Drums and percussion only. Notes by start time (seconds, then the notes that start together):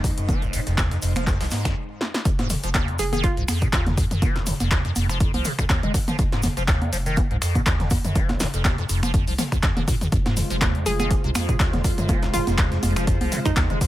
0.04 kick, closed hi-hat, open hi-hat, shaker
0.17 closed hi-hat, shaker
0.29 kick, closed hi-hat, high conga, shaker
0.42 closed hi-hat, shaker
0.53 closed hi-hat, open hi-hat, shaker
0.67 snare, closed hi-hat, shaker
0.78 finger snap, kick, snare, clap, closed hi-hat, high conga, shaker
0.91 snare, closed hi-hat, shaker
1.02 closed hi-hat, open hi-hat, shaker
1.15 finger snap, snare, closed hi-hat, high conga, shaker
1.27 kick, snare, clap, closed hi-hat, shaker
1.40 snare, closed hi-hat, open hi-hat, shaker
1.51 snare, closed hi-hat, open hi-hat, high conga, shaker
1.65 finger snap, kick, snare, closed hi-hat, shaker
2.01 snare
2.14 snare
2.25 kick, closed hi-hat, shaker
2.39 snare, closed hi-hat, high conga
2.50 snare, closed hi-hat, open hi-hat, mid tom, shaker
2.63 snare, closed hi-hat, shaker
2.74 finger snap, kick, snare, clap, closed hi-hat, high conga, shaker
2.88 closed hi-hat
2.99 closed hi-hat, open hi-hat, shaker
3.13 closed hi-hat, high conga, shaker
3.23 kick, closed hi-hat, shaker
3.37 closed hi-hat
3.48 finger snap, closed hi-hat, open hi-hat, high conga, shaker
3.62 kick, closed hi-hat, shaker
3.73 kick, snare, clap, closed hi-hat, shaker
3.87 snare, closed hi-hat, mid tom, high conga
3.97 kick, closed hi-hat, open hi-hat, shaker
4.11 closed hi-hat, mid tom, shaker
4.22 kick, closed hi-hat, high conga, shaker
4.36 snare, closed hi-hat
4.46 closed hi-hat, open hi-hat, mid tom, shaker
4.60 snare, closed hi-hat, high conga, shaker
4.71 finger snap, kick, snare, clap, closed hi-hat, shaker
4.85 snare, closed hi-hat
4.96 closed hi-hat, open hi-hat, high conga, shaker
5.09 finger snap, snare, closed hi-hat, shaker
5.20 kick, closed hi-hat, shaker
5.34 open hi-hat, high conga
5.45 closed hi-hat, open hi-hat, mid tom, shaker
5.59 finger snap, kick, closed hi-hat, shaker
5.70 kick, snare, clap, closed hi-hat, high conga, shaker
5.83 closed hi-hat, mid tom
5.94 kick, closed hi-hat, open hi-hat, shaker
6.08 snare, closed hi-hat, mid tom, high conga, shaker
6.18 kick, closed hi-hat, shaker
6.32 snare, closed hi-hat
6.42 snare, closed hi-hat, open hi-hat, mid tom, high conga, shaker
6.57 snare, closed hi-hat, shaker
6.68 finger snap, kick, snare, clap, closed hi-hat, shaker
6.82 closed hi-hat, high conga
6.93 closed hi-hat, open hi-hat, shaker
7.06 closed hi-hat, shaker
7.17 kick, closed hi-hat, high conga, shaker
7.31 closed hi-hat
7.42 finger snap, closed hi-hat, open hi-hat, shaker
7.55 kick, closed hi-hat, high conga, shaker
7.66 kick, snare, clap, closed hi-hat, shaker
7.80 snare, closed hi-hat, mid tom
7.90 kick, closed hi-hat, open hi-hat, high conga, shaker
8.05 closed hi-hat, mid tom, shaker
8.15 kick, closed hi-hat, shaker
8.29 snare, closed hi-hat, high conga
8.40 snare, closed hi-hat, open hi-hat, mid tom, shaker
8.53 snare, closed hi-hat, shaker
8.65 finger snap, kick, snare, clap, closed hi-hat, high conga, shaker
8.78 snare, closed hi-hat
8.89 closed hi-hat, open hi-hat, shaker
9.03 finger snap, snare, closed hi-hat, high conga, shaker
9.14 kick, closed hi-hat, shaker
9.27 open hi-hat
9.38 snare, closed hi-hat, open hi-hat, mid tom, high conga, shaker
9.52 finger snap, kick, closed hi-hat, shaker
9.63 kick, snare, clap, closed hi-hat, shaker
9.77 snare, closed hi-hat, mid tom, high conga
9.88 kick, open hi-hat, shaker
10.01 closed hi-hat, mid tom, shaker
10.12 kick, closed hi-hat, shaker
10.26 snare, closed hi-hat, high conga
10.37 snare, closed hi-hat, open hi-hat, mid tom, shaker
10.50 snare, closed hi-hat, shaker
10.61 finger snap, kick, snare, clap, closed hi-hat, high conga, shaker
10.75 closed hi-hat
10.86 closed hi-hat, open hi-hat, shaker
10.99 closed hi-hat, high conga, shaker
11.11 kick, closed hi-hat, shaker
11.24 closed hi-hat
11.35 finger snap, closed hi-hat, open hi-hat, high conga, shaker
11.49 kick, closed hi-hat, shaker
11.60 kick, snare, clap, closed hi-hat, shaker
11.73 snare, closed hi-hat, mid tom, high conga
11.84 kick, closed hi-hat, open hi-hat, shaker
11.98 closed hi-hat, mid tom, shaker
12.08 kick, closed hi-hat, high conga, shaker
12.23 snare, closed hi-hat
12.34 closed hi-hat, open hi-hat, mid tom, shaker
12.47 snare, closed hi-hat, high conga, shaker
12.58 finger snap, kick, snare, clap, closed hi-hat, shaker
12.72 snare, closed hi-hat
12.83 closed hi-hat, open hi-hat, high conga, shaker
12.96 finger snap, snare, closed hi-hat, shaker
13.07 kick, closed hi-hat, shaker
13.21 open hi-hat, high conga
13.32 closed hi-hat, open hi-hat, mid tom, shaker
13.45 finger snap, kick, closed hi-hat, shaker
13.57 kick, snare, clap, closed hi-hat, high conga, shaker
13.70 closed hi-hat, mid tom
13.81 kick, closed hi-hat, open hi-hat, shaker